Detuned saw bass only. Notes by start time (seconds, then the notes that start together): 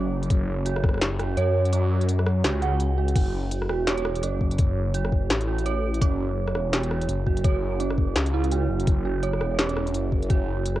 Already playing: F#1
0.30 F#1
1.37 F#2
2.45 C#2
3.16 F#1
3.69 E1
4.23 F#1
5.30 A1
6.02 F#1
6.55 E1
7.09 F#1
8.16 C#2
8.69 F#1
8.87 F#1
9.41 E1
9.94 F#1